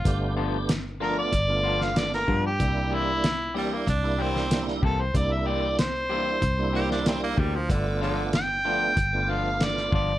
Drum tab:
HH |x---x---x---x---|x---x---x---x---|x---x---x---x---|x---x---x---x---|
SD |----o------ooo--|----o------ooo--|----o------oo---|----o-------oo--|
BD |o-------o-----o-|o-------o-----o-|o-------o-----o-|o-------o-----o-|